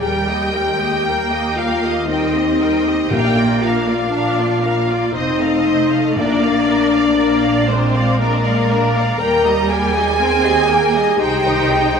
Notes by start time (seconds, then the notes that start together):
0.01 D#2 G3 G4 A#4 G5
0.28 A#3 G4 D#5
0.53 G3 G#3 A#4 G5
0.80 A#3 G4 D#5
1.04 G3 A#3 A#4 G5
1.32 A#3 G4 D#5
1.56 G3 F4 A#4 F5 G5
1.84 A#3 G4 D#5
2.06 G3 C4 D#4 A#4 D#5
2.12 G5
2.34 A#3 G4 D#5
2.60 G3 A#4 G5
2.86 A#3 G4 D#5
3.09 A#1 A#2 A#3 D4 G4 A#4 F5 G5
3.36 A#3 F4 D5
3.61 D4 F4 A#4 F5
3.87 A#3 F4 D5
4.11 D4 A#4 F5
4.38 A#3 F4 D5
4.63 A#3 D4 A#4 F5
4.89 A#3 F4 D5
5.13 F1 C4 D#4 C5 D#5
5.40 A3 A4 F5
5.65 A3 C4 C5 D#5
5.91 A3 A4 F5
6.16 A#1 A#2 A#3 D4 A#4 D5
6.42 A#3 D5 F5
6.68 D4 A#4 D5
6.93 A#3 D5 F5
7.17 A#3 D4 A#4 D5
7.43 A#3 D5 F5
7.67 G#3 C4 D4 A#4 C5 D5
7.93 A#3 D5 F5
8.18 A#3 D4 A#4 D5
8.44 A#3 D5 F5
8.71 D4 A#4 D5
8.96 A#3 D5 F5
9.19 D#2 G3 A#3 A#4 G5 A#5
9.47 G3 G4 D#5
9.69 A#3 G#4 A#4 G5 G#5
9.96 G3 G4 D#5
10.20 A#3 C4 A#4 G5
10.44 G3 G4 D#5
10.68 A#3 A#4 G5
10.93 G3 G4 D#5
11.17 C2 G#3 D#4 G4 G#4 C5 G5
11.45 D#3 C5 D#5
11.70 G#3 G#4 C5
11.96 D#5